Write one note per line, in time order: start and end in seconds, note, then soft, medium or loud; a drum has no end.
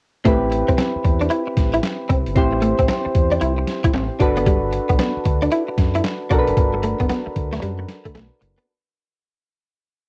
0.25 0.61 A1 loud
0.25 0.36 A3 medium
0.25 2.32 C4 medium
0.25 2.32 E4 medium
0.25 2.33 G4 medium
0.25 2.33 B4 medium
0.25 kick loud
0.25 closed hi-hat medium
0.52 muted clean electric guitar stroke soft
0.52 closed hi-hat medium
0.68 0.77 C2 loud
0.68 0.74 C4 medium
0.68 kick medium
0.68 closed hi-hat soft
0.78 0.88 C4 medium
0.78 snare loud
0.78 clap medium
0.78 closed hi-hat medium
0.96 muted fingered electric bass stroke soft
1.04 1.26 E2 medium
1.04 muted clean electric guitar stroke soft
1.04 kick medium
1.04 closed hi-hat medium
1.21 1.27 D4 medium
1.21 closed hi-hat soft
1.30 1.41 E4 medium
1.30 closed hi-hat medium
1.47 muted clean electric guitar stroke soft
1.57 1.79 A1 loud
1.57 kick medium
1.57 snare medium
1.57 closed hi-hat medium
1.74 1.80 E4 medium
1.74 closed hi-hat medium
1.83 snare medium
1.83 clap medium
1.83 closed hi-hat medium
2.09 2.24 C2 medium
2.09 2.20 C4 medium
2.09 kick medium
2.09 closed hi-hat medium
2.26 2.35 G1 medium
2.26 closed hi-hat soft
2.35 2.72 A1 loud
2.35 4.16 C4 medium
2.35 4.17 E4 medium
2.35 4.17 G4 medium
2.35 4.18 C5 medium
2.35 kick loud
2.35 closed hi-hat medium
2.53 muted clean electric guitar stroke soft
2.62 2.72 A3 medium
2.62 closed hi-hat medium
2.79 2.87 A1 medium
2.79 2.85 C4 medium
2.79 kick medium
2.79 closed hi-hat soft
2.88 2.99 C4 medium
2.88 snare loud
2.88 clap medium
2.88 closed hi-hat medium
3.05 muted clean electric guitar stroke soft
3.05 muted fingered electric bass stroke soft
3.15 3.37 E2 medium
3.15 kick loud
3.15 closed hi-hat medium
3.32 3.38 D4 medium
3.32 closed hi-hat soft
3.41 3.63 C2 medium
3.41 3.51 E4 medium
3.41 closed hi-hat medium
3.58 muted clean electric guitar stroke soft
3.67 snare medium
3.67 closed hi-hat medium
3.84 3.92 A1 medium
3.84 3.90 E4 medium
3.84 kick medium
3.84 closed hi-hat medium
3.94 4.08 A1 medium
3.94 4.05 C4 medium
3.94 snare medium
3.94 clap medium
3.94 closed hi-hat medium
4.20 4.78 G1 medium
4.20 6.26 D4 medium
4.20 6.27 F#4 medium
4.20 6.27 A4 medium
4.20 6.28 B4 medium
4.20 muted clean electric guitar stroke soft
4.20 kick medium
4.20 closed hi-hat medium
4.37 4.43 B3 medium
4.37 closed hi-hat medium
4.46 4.57 G3 medium
4.46 kick loud
4.46 closed hi-hat medium
4.73 muted clean electric guitar stroke soft
4.73 closed hi-hat medium
4.89 4.98 B1 medium
4.89 4.95 B3 medium
4.89 kick medium
4.89 closed hi-hat soft
4.99 5.10 B3 medium
4.99 snare loud
4.99 clap medium
4.99 closed hi-hat medium
5.17 muted fingered electric bass stroke soft
5.25 5.47 D2 medium
5.25 muted clean electric guitar stroke soft
5.25 kick loud
5.25 closed hi-hat medium
5.42 5.48 D4 medium
5.42 closed hi-hat soft
5.52 5.62 E4 medium
5.52 closed hi-hat medium
5.68 muted clean electric guitar stroke soft
5.78 6.00 F#2 medium
5.78 kick medium
5.78 snare medium
5.78 closed hi-hat medium
5.95 6.01 E4 medium
5.95 closed hi-hat medium
6.04 snare medium
6.04 clap medium
6.04 closed hi-hat medium
6.30 6.45 B1 medium
6.30 8.37 D4 medium
6.30 6.41 D4 medium
6.30 8.37 F#4 medium
6.30 8.38 A4 medium
6.30 6.40 A#4 medium
6.30 kick medium
6.30 closed hi-hat medium
6.39 8.41 B4 medium
6.47 6.56 F#1 medium
6.47 closed hi-hat medium
6.57 6.93 G1 loud
6.57 kick loud
6.57 closed hi-hat medium
6.74 muted clean electric guitar stroke soft
6.83 6.94 A3 medium
6.83 closed hi-hat medium
7.00 7.08 F#1 medium
7.00 7.06 B3 medium
7.00 kick medium
7.00 closed hi-hat soft
7.09 7.20 B3 medium
7.09 snare loud
7.09 clap medium
7.09 closed hi-hat medium
7.26 muted clean electric guitar stroke soft
7.26 muted fingered electric bass stroke soft
7.36 7.58 D2 medium
7.36 kick medium
7.36 closed hi-hat medium
7.52 7.59 A3 medium
7.52 snare medium
7.52 closed hi-hat soft
7.62 7.84 F#2 medium
7.62 7.72 G3 medium
7.62 closed hi-hat medium
7.79 muted clean electric guitar stroke soft
7.88 snare medium
7.88 closed hi-hat medium
8.05 8.13 D2 medium
8.05 8.11 A3 medium
8.05 kick medium
8.05 closed hi-hat medium
8.15 8.29 B1 medium
8.15 8.25 A3 medium
8.15 snare medium
8.15 clap medium
8.15 closed hi-hat medium
8.41 8.55 F#1 medium
8.41 muted clean electric guitar stroke soft
8.41 closed hi-hat medium
8.58 8.64 B3 medium
8.58 closed hi-hat medium